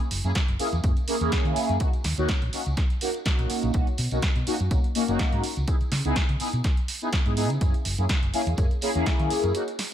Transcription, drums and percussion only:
0.00 closed hi-hat soft
0.11 open hi-hat loud
0.11 tambourine loud
0.24 closed hi-hat soft
0.24 tambourine soft
0.35 kick loud
0.35 snare loud
0.35 closed hi-hat medium
0.35 tambourine medium
0.48 closed hi-hat soft
0.48 tambourine soft
0.59 open hi-hat loud
0.59 tambourine medium
0.73 closed hi-hat soft
0.73 tambourine soft
0.83 kick loud
0.83 closed hi-hat medium
0.83 tambourine soft
0.97 closed hi-hat soft
0.97 tambourine soft
1.08 open hi-hat loud
1.08 tambourine medium
1.21 closed hi-hat soft
1.21 tambourine soft
1.32 kick loud
1.32 snare loud
1.32 closed hi-hat medium
1.45 closed hi-hat soft
1.45 tambourine soft
1.56 open hi-hat loud
1.56 tambourine medium
1.69 closed hi-hat soft
1.69 tambourine soft
1.80 kick loud
1.80 closed hi-hat medium
1.80 tambourine medium
1.93 closed hi-hat soft
1.93 tambourine soft
2.04 snare medium
2.04 open hi-hat loud
2.04 tambourine medium
2.18 closed hi-hat soft
2.18 tambourine soft
2.29 kick loud
2.29 snare loud
2.29 closed hi-hat medium
2.29 tambourine medium
2.42 closed hi-hat soft
2.42 tambourine soft
2.53 open hi-hat loud
2.53 tambourine medium
2.66 closed hi-hat soft
2.66 tambourine soft
2.77 kick loud
2.77 snare medium
2.77 closed hi-hat medium
2.77 tambourine medium
2.90 closed hi-hat soft
2.90 tambourine soft
3.01 open hi-hat loud
3.01 tambourine medium
3.15 closed hi-hat soft
3.15 tambourine soft
3.25 kick loud
3.25 snare loud
3.25 closed hi-hat medium
3.25 tambourine medium
3.39 closed hi-hat soft
3.39 tambourine soft
3.50 open hi-hat loud
3.50 tambourine medium
3.62 closed hi-hat soft
3.62 tambourine soft
3.73 kick loud
3.73 closed hi-hat medium
3.73 tambourine soft
3.87 closed hi-hat soft
3.87 tambourine soft
3.98 open hi-hat loud
3.98 tambourine medium
4.11 closed hi-hat soft
4.11 tambourine soft
4.22 kick loud
4.22 snare loud
4.22 closed hi-hat medium
4.22 tambourine soft
4.36 closed hi-hat soft
4.36 tambourine soft
4.47 open hi-hat loud
4.47 tambourine medium
4.60 tambourine soft
4.71 kick loud
4.71 closed hi-hat medium
4.71 tambourine medium
4.84 closed hi-hat soft
4.84 tambourine soft
4.95 open hi-hat loud
4.95 tambourine medium
5.08 closed hi-hat soft
5.08 tambourine soft
5.19 kick loud
5.19 snare loud
5.19 closed hi-hat medium
5.32 closed hi-hat soft
5.32 tambourine soft
5.44 open hi-hat loud
5.44 tambourine medium
5.57 closed hi-hat soft
5.57 tambourine soft
5.68 kick loud
5.68 closed hi-hat medium
5.68 tambourine soft
5.81 closed hi-hat soft
5.81 tambourine soft
5.92 snare medium
5.92 open hi-hat loud
5.92 tambourine medium
6.05 closed hi-hat soft
6.05 tambourine soft
6.16 kick loud
6.16 snare loud
6.16 closed hi-hat medium
6.16 tambourine soft
6.29 closed hi-hat soft
6.29 tambourine soft
6.40 open hi-hat loud
6.40 tambourine medium
6.53 closed hi-hat soft
6.53 tambourine soft
6.64 kick loud
6.64 snare medium
6.64 closed hi-hat medium
6.64 tambourine medium
6.77 closed hi-hat soft
6.77 tambourine soft
6.88 open hi-hat loud
6.88 tambourine medium
7.02 tambourine soft
7.13 kick loud
7.13 snare loud
7.13 closed hi-hat medium
7.26 closed hi-hat soft
7.37 open hi-hat loud
7.37 tambourine medium
7.50 closed hi-hat soft
7.50 tambourine soft
7.61 kick loud
7.61 closed hi-hat medium
7.61 tambourine soft
7.74 closed hi-hat soft
7.74 tambourine soft
7.85 open hi-hat loud
7.85 tambourine medium
7.98 closed hi-hat soft
7.98 tambourine soft
8.09 kick loud
8.09 snare loud
8.09 closed hi-hat medium
8.23 closed hi-hat soft
8.23 tambourine soft
8.34 open hi-hat loud
8.34 tambourine medium
8.47 closed hi-hat soft
8.47 tambourine soft
8.57 kick loud
8.57 closed hi-hat medium
8.57 tambourine medium
8.71 closed hi-hat soft
8.71 tambourine soft
8.81 open hi-hat loud
8.81 tambourine medium
8.95 closed hi-hat soft
8.95 tambourine soft
9.06 kick loud
9.06 snare loud
9.06 closed hi-hat medium
9.06 tambourine soft
9.19 closed hi-hat soft
9.19 tambourine soft
9.30 open hi-hat loud
9.30 tambourine medium
9.44 closed hi-hat soft
9.44 tambourine soft
9.54 closed hi-hat medium
9.54 tambourine soft
9.68 closed hi-hat soft
9.68 tambourine soft
9.79 snare medium
9.79 open hi-hat loud
9.79 tambourine medium

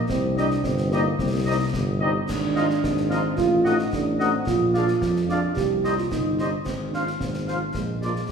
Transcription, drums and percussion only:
0.10 concert bass drum medium
0.10 snare medium
0.37 snare soft
0.51 snare soft
0.64 concert bass drum medium
0.64 snare medium
0.77 snare soft
0.92 snare soft
1.19 concert bass drum medium
1.19 snare medium
1.74 concert bass drum medium
1.74 snare medium
2.29 concert bass drum medium
2.29 snare medium
2.29 crash soft
2.56 snare soft
2.70 snare soft
2.84 concert bass drum medium
2.84 snare medium
2.97 snare soft
3.11 snare medium
3.38 concert bass drum medium
3.38 snare medium
3.65 snare soft
3.79 snare soft
3.93 concert bass drum medium
3.93 snare medium
4.20 snare soft
4.47 concert bass drum medium
4.47 snare medium
4.74 snare soft
4.88 snare soft
5.02 concert bass drum medium
5.02 snare medium
5.16 snare soft
5.29 snare soft
5.57 concert bass drum medium
5.57 snare medium
5.84 snare soft
5.98 snare soft
6.12 concert bass drum medium
6.12 snare medium
6.39 snare soft
6.66 concert bass drum medium
6.66 snare medium
6.66 crash soft
6.94 snare soft
7.07 snare soft
7.21 concert bass drum medium
7.21 snare medium
7.34 snare soft
7.48 snare soft
7.74 concert bass drum medium
7.74 snare medium
8.02 snare soft
8.16 snare soft

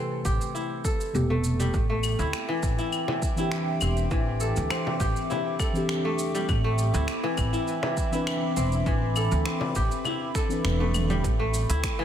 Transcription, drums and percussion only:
0.25 kick medium
0.25 shaker medium
0.41 shaker soft
0.55 shaker soft
0.85 kick medium
0.85 shaker medium
1.01 shaker soft
1.15 shaker soft
1.44 shaker medium
1.60 shaker soft
1.74 kick loud
1.74 shaker soft
2.03 claves medium
2.03 shaker medium
2.19 shaker soft
2.33 finger snap medium
2.33 shaker soft
2.63 kick medium
2.63 shaker medium
2.79 shaker soft
2.92 claves medium
2.92 shaker soft
3.08 finger snap soft
3.08 frame drum medium
3.22 kick medium
3.22 shaker medium
3.37 shaker soft
3.52 finger snap medium
3.52 shaker soft
3.81 claves medium
3.81 shaker medium
3.97 shaker soft
4.11 kick loud
4.11 shaker soft
4.40 shaker medium
4.56 shaker soft
4.70 finger snap loud
4.70 claves medium
4.70 shaker soft
4.87 frame drum medium
5.00 kick medium
5.00 shaker medium
5.16 shaker soft
5.30 frame drum medium
5.30 shaker soft
5.60 finger snap soft
5.60 kick loud
5.60 claves medium
5.60 shaker medium
5.75 shaker soft
5.89 finger snap medium
5.89 shaker soft
6.19 shaker medium
6.35 shaker soft
6.49 kick loud
6.49 claves medium
6.49 shaker soft
6.78 shaker medium
6.94 shaker soft
7.08 finger snap loud
7.08 shaker soft
7.37 kick medium
7.37 claves medium
7.37 shaker medium
7.53 shaker soft
7.67 shaker soft
7.83 finger snap soft
7.83 frame drum medium
7.97 kick medium
7.97 shaker medium
8.13 shaker soft
8.27 finger snap medium
8.27 claves medium
8.27 shaker soft
8.57 shaker medium
8.72 shaker soft
8.86 kick loud
8.86 shaker soft
9.16 claves medium
9.16 shaker medium
9.31 shaker soft
9.46 finger snap loud
9.46 shaker soft
9.61 frame drum medium
9.75 kick medium
9.75 shaker medium
9.91 shaker soft
10.04 frame drum medium
10.04 claves medium
10.04 shaker soft
10.35 finger snap soft
10.35 kick medium
10.35 shaker medium
10.50 shaker soft
10.65 finger snap loud
10.65 shaker soft
10.80 high tom soft
10.94 mid tom medium
10.94 claves medium
10.94 shaker medium
11.10 mid tom medium
11.10 shaker soft
11.24 kick loud
11.24 open hi-hat soft
11.24 shaker soft
11.54 shaker medium
11.70 open hi-hat medium
11.70 shaker soft
11.84 finger snap loud
11.84 kick loud
11.84 open hi-hat medium
11.84 shaker soft

